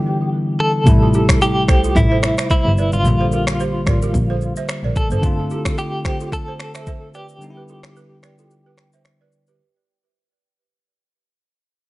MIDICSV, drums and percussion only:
0, 0, Header, 1, 2, 480
1, 0, Start_track
1, 0, Tempo, 545455
1, 763, Time_signature, 4, 2, 24, 8
1, 10465, End_track
2, 0, Start_track
2, 0, Title_t, "Drums"
2, 763, Note_on_c, 9, 36, 115
2, 763, Note_on_c, 9, 82, 77
2, 851, Note_off_c, 9, 36, 0
2, 851, Note_off_c, 9, 82, 0
2, 1000, Note_on_c, 9, 82, 52
2, 1088, Note_off_c, 9, 82, 0
2, 1134, Note_on_c, 9, 37, 110
2, 1135, Note_on_c, 9, 36, 89
2, 1136, Note_on_c, 9, 82, 79
2, 1140, Note_on_c, 9, 26, 89
2, 1222, Note_off_c, 9, 37, 0
2, 1223, Note_off_c, 9, 36, 0
2, 1224, Note_off_c, 9, 82, 0
2, 1228, Note_off_c, 9, 26, 0
2, 1246, Note_on_c, 9, 82, 73
2, 1334, Note_off_c, 9, 82, 0
2, 1482, Note_on_c, 9, 37, 91
2, 1482, Note_on_c, 9, 82, 53
2, 1483, Note_on_c, 9, 36, 94
2, 1488, Note_on_c, 9, 26, 71
2, 1570, Note_off_c, 9, 37, 0
2, 1570, Note_off_c, 9, 82, 0
2, 1571, Note_off_c, 9, 36, 0
2, 1576, Note_off_c, 9, 26, 0
2, 1618, Note_on_c, 9, 82, 69
2, 1706, Note_off_c, 9, 82, 0
2, 1723, Note_on_c, 9, 36, 79
2, 1727, Note_on_c, 9, 82, 76
2, 1811, Note_off_c, 9, 36, 0
2, 1815, Note_off_c, 9, 82, 0
2, 1960, Note_on_c, 9, 82, 44
2, 1962, Note_on_c, 9, 37, 99
2, 1968, Note_on_c, 9, 26, 74
2, 2048, Note_off_c, 9, 82, 0
2, 2050, Note_off_c, 9, 37, 0
2, 2056, Note_off_c, 9, 26, 0
2, 2093, Note_on_c, 9, 82, 80
2, 2096, Note_on_c, 9, 37, 80
2, 2102, Note_on_c, 9, 26, 67
2, 2181, Note_off_c, 9, 82, 0
2, 2184, Note_off_c, 9, 37, 0
2, 2190, Note_off_c, 9, 26, 0
2, 2201, Note_on_c, 9, 82, 63
2, 2205, Note_on_c, 9, 36, 91
2, 2289, Note_off_c, 9, 82, 0
2, 2293, Note_off_c, 9, 36, 0
2, 2443, Note_on_c, 9, 82, 49
2, 2531, Note_off_c, 9, 82, 0
2, 2572, Note_on_c, 9, 82, 78
2, 2660, Note_off_c, 9, 82, 0
2, 2684, Note_on_c, 9, 82, 78
2, 2772, Note_off_c, 9, 82, 0
2, 2921, Note_on_c, 9, 82, 52
2, 3009, Note_off_c, 9, 82, 0
2, 3054, Note_on_c, 9, 37, 108
2, 3056, Note_on_c, 9, 82, 76
2, 3060, Note_on_c, 9, 26, 88
2, 3142, Note_off_c, 9, 37, 0
2, 3144, Note_off_c, 9, 82, 0
2, 3148, Note_off_c, 9, 26, 0
2, 3167, Note_on_c, 9, 82, 69
2, 3255, Note_off_c, 9, 82, 0
2, 3402, Note_on_c, 9, 37, 93
2, 3402, Note_on_c, 9, 82, 52
2, 3404, Note_on_c, 9, 36, 101
2, 3408, Note_on_c, 9, 26, 70
2, 3490, Note_off_c, 9, 37, 0
2, 3490, Note_off_c, 9, 82, 0
2, 3492, Note_off_c, 9, 36, 0
2, 3496, Note_off_c, 9, 26, 0
2, 3539, Note_on_c, 9, 82, 69
2, 3627, Note_off_c, 9, 82, 0
2, 3643, Note_on_c, 9, 36, 78
2, 3647, Note_on_c, 9, 82, 73
2, 3731, Note_off_c, 9, 36, 0
2, 3735, Note_off_c, 9, 82, 0
2, 3882, Note_on_c, 9, 82, 45
2, 3970, Note_off_c, 9, 82, 0
2, 4015, Note_on_c, 9, 82, 77
2, 4103, Note_off_c, 9, 82, 0
2, 4123, Note_on_c, 9, 82, 66
2, 4124, Note_on_c, 9, 37, 96
2, 4130, Note_on_c, 9, 26, 80
2, 4211, Note_off_c, 9, 82, 0
2, 4212, Note_off_c, 9, 37, 0
2, 4218, Note_off_c, 9, 26, 0
2, 4363, Note_on_c, 9, 82, 47
2, 4365, Note_on_c, 9, 36, 91
2, 4451, Note_off_c, 9, 82, 0
2, 4453, Note_off_c, 9, 36, 0
2, 4493, Note_on_c, 9, 82, 79
2, 4581, Note_off_c, 9, 82, 0
2, 4604, Note_on_c, 9, 36, 118
2, 4604, Note_on_c, 9, 82, 80
2, 4692, Note_off_c, 9, 36, 0
2, 4692, Note_off_c, 9, 82, 0
2, 4841, Note_on_c, 9, 82, 50
2, 4929, Note_off_c, 9, 82, 0
2, 4975, Note_on_c, 9, 37, 106
2, 4976, Note_on_c, 9, 36, 91
2, 4977, Note_on_c, 9, 82, 79
2, 4980, Note_on_c, 9, 26, 83
2, 5063, Note_off_c, 9, 37, 0
2, 5064, Note_off_c, 9, 36, 0
2, 5065, Note_off_c, 9, 82, 0
2, 5068, Note_off_c, 9, 26, 0
2, 5087, Note_on_c, 9, 82, 67
2, 5175, Note_off_c, 9, 82, 0
2, 5322, Note_on_c, 9, 82, 52
2, 5323, Note_on_c, 9, 37, 87
2, 5324, Note_on_c, 9, 36, 91
2, 5328, Note_on_c, 9, 26, 68
2, 5410, Note_off_c, 9, 82, 0
2, 5411, Note_off_c, 9, 37, 0
2, 5412, Note_off_c, 9, 36, 0
2, 5416, Note_off_c, 9, 26, 0
2, 5459, Note_on_c, 9, 82, 70
2, 5547, Note_off_c, 9, 82, 0
2, 5564, Note_on_c, 9, 36, 80
2, 5568, Note_on_c, 9, 82, 76
2, 5652, Note_off_c, 9, 36, 0
2, 5656, Note_off_c, 9, 82, 0
2, 5802, Note_on_c, 9, 82, 44
2, 5804, Note_on_c, 9, 37, 92
2, 5809, Note_on_c, 9, 26, 75
2, 5890, Note_off_c, 9, 82, 0
2, 5892, Note_off_c, 9, 37, 0
2, 5897, Note_off_c, 9, 26, 0
2, 5935, Note_on_c, 9, 82, 78
2, 5937, Note_on_c, 9, 37, 83
2, 5943, Note_on_c, 9, 26, 66
2, 6023, Note_off_c, 9, 82, 0
2, 6025, Note_off_c, 9, 37, 0
2, 6031, Note_off_c, 9, 26, 0
2, 6042, Note_on_c, 9, 82, 67
2, 6045, Note_on_c, 9, 36, 91
2, 6130, Note_off_c, 9, 82, 0
2, 6133, Note_off_c, 9, 36, 0
2, 6283, Note_on_c, 9, 82, 49
2, 6371, Note_off_c, 9, 82, 0
2, 6413, Note_on_c, 9, 82, 77
2, 6501, Note_off_c, 9, 82, 0
2, 6524, Note_on_c, 9, 82, 77
2, 6612, Note_off_c, 9, 82, 0
2, 6760, Note_on_c, 9, 82, 51
2, 6848, Note_off_c, 9, 82, 0
2, 6893, Note_on_c, 9, 37, 107
2, 6896, Note_on_c, 9, 82, 78
2, 6899, Note_on_c, 9, 26, 85
2, 6981, Note_off_c, 9, 37, 0
2, 6984, Note_off_c, 9, 82, 0
2, 6987, Note_off_c, 9, 26, 0
2, 7007, Note_on_c, 9, 82, 67
2, 7095, Note_off_c, 9, 82, 0
2, 7242, Note_on_c, 9, 37, 87
2, 7242, Note_on_c, 9, 82, 52
2, 7248, Note_on_c, 9, 26, 71
2, 7330, Note_off_c, 9, 37, 0
2, 7330, Note_off_c, 9, 82, 0
2, 7336, Note_off_c, 9, 26, 0
2, 7378, Note_on_c, 9, 82, 65
2, 7466, Note_off_c, 9, 82, 0
2, 7486, Note_on_c, 9, 82, 71
2, 7574, Note_off_c, 9, 82, 0
2, 7721, Note_on_c, 9, 82, 44
2, 7723, Note_on_c, 9, 37, 90
2, 7728, Note_on_c, 9, 26, 74
2, 7809, Note_off_c, 9, 82, 0
2, 7811, Note_off_c, 9, 37, 0
2, 7816, Note_off_c, 9, 26, 0
2, 7854, Note_on_c, 9, 82, 77
2, 7942, Note_off_c, 9, 82, 0
2, 7961, Note_on_c, 9, 82, 62
2, 7963, Note_on_c, 9, 37, 91
2, 7969, Note_on_c, 9, 26, 75
2, 8049, Note_off_c, 9, 82, 0
2, 8051, Note_off_c, 9, 37, 0
2, 8057, Note_off_c, 9, 26, 0
2, 8203, Note_on_c, 9, 82, 50
2, 8291, Note_off_c, 9, 82, 0
2, 8332, Note_on_c, 9, 82, 76
2, 8420, Note_off_c, 9, 82, 0
2, 10465, End_track
0, 0, End_of_file